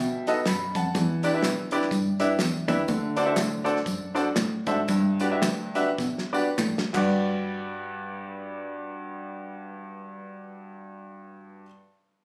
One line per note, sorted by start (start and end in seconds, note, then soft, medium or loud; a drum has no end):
0.00 0.39 B2 loud
0.00 0.72 B2 medium
0.00 0.25 E5 medium
0.00 0.25 G5 medium
0.27 0.38 D#4 medium
0.27 0.38 F#4 medium
0.27 0.38 A4 medium
0.27 0.38 B4 medium
0.27 0.38 D#5 medium
0.27 snare soft
0.27 closed hi-hat medium
0.27 tambourine medium
0.46 0.71 F#2 medium
0.46 0.74 B5 medium
0.46 snare loud
0.46 clap medium
0.46 closed hi-hat medium
0.46 tambourine medium
0.75 0.92 F2 loud
0.75 1.22 F#5 medium
0.75 1.22 A5 medium
0.75 kick medium
0.75 closed hi-hat medium
0.75 tambourine medium
0.95 1.36 E2 loud
0.95 1.69 E3 medium
0.95 kick loud
0.95 closed hi-hat medium
0.95 tambourine medium
1.23 1.29 D4 medium
1.23 1.29 E4 medium
1.23 1.29 G4 medium
1.23 1.29 B4 medium
1.23 1.29 D5 medium
1.23 closed hi-hat medium
1.23 tambourine medium
1.33 1.44 D4 medium
1.33 1.44 E4 medium
1.33 1.44 G4 medium
1.33 1.44 B4 medium
1.33 1.44 E5 medium
1.43 1.85 B2 medium
1.43 snare loud
1.43 clap loud
1.43 closed hi-hat medium
1.43 tambourine loud
1.71 1.82 D4 medium
1.71 1.83 E4 medium
1.71 1.83 G4 medium
1.71 1.83 B4 medium
1.71 1.83 D5 loud
1.71 closed hi-hat medium
1.71 tambourine medium
1.82 snare soft
1.91 2.33 G2 loud
1.91 kick loud
1.91 closed hi-hat medium
1.91 tambourine medium
2.19 2.31 D4 medium
2.19 2.31 E4 medium
2.19 2.31 G4 medium
2.19 2.31 B4 medium
2.19 2.31 E5 medium
2.19 snare soft
2.19 closed hi-hat medium
2.19 tambourine medium
2.39 2.65 E2 medium
2.39 snare loud
2.39 clap medium
2.39 closed hi-hat medium
2.39 tambourine medium
2.68 2.86 D#2 loud
2.68 2.79 D4 medium
2.68 2.79 E4 medium
2.68 2.79 G4 medium
2.68 2.79 B4 medium
2.68 2.79 E5 loud
2.68 kick loud
2.68 closed hi-hat medium
2.68 tambourine medium
2.88 3.30 D2 loud
2.88 3.62 D3 medium
2.88 kick loud
2.88 closed hi-hat medium
2.88 tambourine medium
3.16 3.22 D4 medium
3.16 3.22 F#4 medium
3.16 3.22 A4 medium
3.16 3.23 C5 medium
3.16 3.23 D5 loud
3.16 closed hi-hat medium
3.16 tambourine medium
3.26 3.37 D4 medium
3.26 3.37 F#4 medium
3.26 3.37 A4 medium
3.26 3.37 C5 medium
3.26 3.38 E5 medium
3.36 3.80 A2 loud
3.36 snare loud
3.36 clap loud
3.36 closed hi-hat medium
3.36 tambourine loud
3.64 3.76 D4 medium
3.64 3.76 F#4 medium
3.64 3.76 A4 medium
3.64 3.76 C5 medium
3.64 3.76 D5 medium
3.64 closed hi-hat medium
3.64 tambourine medium
3.76 snare soft
3.86 4.29 F#2 medium
3.86 kick loud
3.86 closed hi-hat medium
3.86 tambourine medium
4.15 4.26 D4 medium
4.15 4.26 F#4 medium
4.15 4.27 A4 medium
4.15 4.26 C5 medium
4.15 4.27 D5 medium
4.15 snare soft
4.15 closed hi-hat medium
4.15 tambourine medium
4.36 4.63 A2 loud
4.36 snare loud
4.36 clap medium
4.36 closed hi-hat loud
4.36 tambourine medium
4.66 4.86 G#2 loud
4.66 4.78 D4 medium
4.66 4.79 F#4 medium
4.66 4.79 A4 medium
4.66 4.79 C5 medium
4.66 4.79 E5 medium
4.66 kick loud
4.66 closed hi-hat medium
4.66 tambourine medium
4.88 5.35 G2 loud
4.88 5.72 G2 medium
4.88 kick loud
4.88 closed hi-hat medium
4.88 tambourine medium
5.20 5.26 D4 medium
5.20 5.26 F#4 medium
5.20 5.27 G4 medium
5.20 5.27 B4 medium
5.20 5.27 D5 medium
5.20 closed hi-hat medium
5.20 tambourine medium
5.31 5.43 D4 medium
5.31 5.43 F#4 medium
5.31 5.44 G4 medium
5.31 5.44 B4 medium
5.31 5.44 E5 medium
5.42 5.91 D2 medium
5.42 snare loud
5.42 clap loud
5.42 closed hi-hat medium
5.42 tambourine loud
5.75 5.88 D4 medium
5.75 5.88 F#4 medium
5.75 5.88 G4 medium
5.75 5.88 B4 medium
5.75 5.88 E5 medium
5.75 closed hi-hat medium
5.75 tambourine medium
5.98 6.49 B2 medium
5.98 kick loud
5.98 snare medium
5.98 tambourine medium
6.18 snare medium
6.33 6.46 D4 medium
6.33 6.46 F#4 medium
6.33 6.46 G4 medium
6.33 6.46 B4 medium
6.33 6.46 D5 medium
6.33 tambourine medium
6.58 6.89 A2 loud
6.58 clap medium
6.58 mid tom medium
6.58 tambourine medium
6.78 snare medium
6.93 11.64 G2 medium
6.93 11.62 F#4 medium
6.93 11.64 G4 medium
6.93 11.65 B4 medium
6.93 kick loud
6.93 clap medium
6.93 crash medium
6.97 11.67 D5 medium